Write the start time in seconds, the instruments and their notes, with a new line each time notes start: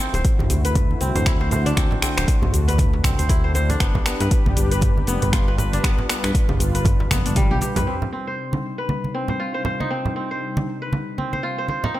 Already playing: analog synth pad D3 A3 E4 F#4, kora D#4 F4 C5
0.00 kora C4, shaker
0.14 analog synth bass D1, kora C5, closed hi-hat, djembe slap, djembe tone, shaker
0.25 kick, closed hi-hat, shaker
0.39 mid tom, high conga, djembe bass
0.50 analog synth bass D2, closed hi-hat, djembe tone, djembe bass, shaker
0.65 kora B4, closed hi-hat, shaker
0.75 kick, closed hi-hat, mid tom, djembe tone, high conga, shaker
0.91 high conga
1.01 analog synth bass C2, kora C4, closed hi-hat, shaker
1.15 analog synth bass D2, kora C5, closed hi-hat, mid tom, djembe tone, low conga, shaker
1.26 kora E4, finger snap, kick, closed hi-hat, shaker
1.41 kora C5, djembe slap, djembe tone
1.51 kora C5, closed hi-hat, low conga, shaker
1.66 kora D4, closed hi-hat, high conga, shaker
1.76 analog synth bass D2, kora C4, analog synth pad D4, finger snap, kick, closed hi-hat, djembe tone, shaker
1.91 djembe slap, low conga
2.02 kora C4, finger snap, djembe tone, shaker
2.17 analog synth bass D1, kora C5, finger snap, closed hi-hat, djembe slap, shaker
2.28 kick, closed hi-hat, shaker
2.42 mid tom, djembe tone, high conga, djembe bass
2.53 analog synth bass D2, closed hi-hat, djembe bass, shaker
2.68 kora B4, closed hi-hat, djembe tone, shaker
2.78 kick, closed hi-hat, mid tom, high conga, shaker
2.93 djembe slap
3.04 analog synth bass C2, kora C4, finger snap, kick, closed hi-hat, mid tom, djembe tone, high conga, shaker
3.18 analog synth bass D2, kora C5, closed hi-hat, high conga, shaker
3.29 kora E4, kick, closed hi-hat, djembe tone, shaker
3.44 kora C5
3.54 kora C5, closed hi-hat, djembe slap, high conga, shaker
3.69 kora D4, closed hi-hat, djembe tone, low conga, shaker
3.80 analog synth bass G1, analog synth pad G3 G4 B4, kora B3, finger snap, kick, closed hi-hat, shaker
3.95 kick, djembe slap, djembe tone, low conga
4.06 kora B3, finger snap, shaker
4.20 analog synth bass G2, kora B4, closed hi-hat, djembe slap, shaker
4.31 kick, closed hi-hat, djembe tone, shaker
4.46 mid tom, high conga, djembe bass
4.56 analog synth bass G1, closed hi-hat, djembe tone, djembe bass, shaker
4.71 kora B4, closed hi-hat, shaker
4.81 kick, closed hi-hat, mid tom, high conga, shaker
4.97 djembe tone, high conga
5.07 analog synth bass F1, kora B3, closed hi-hat, shaker
5.22 analog synth bass G1, kora B4, closed hi-hat, mid tom, djembe tone, low conga, shaker
5.33 kora F4, finger snap, kick, closed hi-hat, shaker
5.48 kora B4, djembe slap
5.58 kora B4, closed hi-hat, djembe tone, low conga, shaker
5.73 kora D4, closed hi-hat, high conga, shaker
5.84 analog synth bass G1, kora B3, analog synth pad F4, finger snap, kick, closed hi-hat, djembe tone, shaker
5.99 djembe slap, low conga
6.09 kora B3, finger snap, closed hi-hat, shaker
6.23 analog synth bass G2, kora B4, finger snap, closed hi-hat, djembe slap, djembe tone, shaker
6.35 kick, closed hi-hat, shaker
6.49 mid tom, djembe tone, high conga, djembe bass
6.60 analog synth bass G1, closed hi-hat, djembe bass, shaker
6.75 kora B4, closed hi-hat, shaker
6.85 kick, closed hi-hat, mid tom, djembe tone, high conga, low conga, shaker
7.00 djembe slap
7.11 analog synth bass F1, kora B3, finger snap, kick, closed hi-hat, mid tom, high tom, djembe tone, high conga, shaker
7.26 analog synth bass G1, kora D4, closed hi-hat, high tom, high conga, shaker
7.36 kora G3, kick, closed hi-hat, mid tom, shaker
7.51 analog synth bass B1, kora G4, mid tom, djembe tone
7.61 kora G4, closed hi-hat, djembe slap, high conga, shaker
7.76 kora B4, closed hi-hat, mid tom, djembe tone, low conga, shaker
7.87 analog synth pad C3 G3 D4 D#4, kora C4
8.02 low conga
8.13 kora C4
8.27 kora C5
8.53 high conga
8.78 kora B4
8.89 high conga
9.04 high conga
9.15 kora C4
9.28 kora C5, low conga
9.40 kora F4
9.54 kora C5
9.65 kora C5, low conga
9.80 kora D#4, high conga
9.90 kora C4
10.05 low conga
10.16 kora C4
10.31 kora C5
10.57 high conga
10.82 kora B4
10.93 high conga
11.18 kora C4, high conga
11.33 kora C5, high conga
11.43 kora F4
11.58 kora C5
11.68 kora C5, high conga
11.84 kora D#4, low conga
11.94 analog synth pad D#3 A#3 F4 G4, kora C4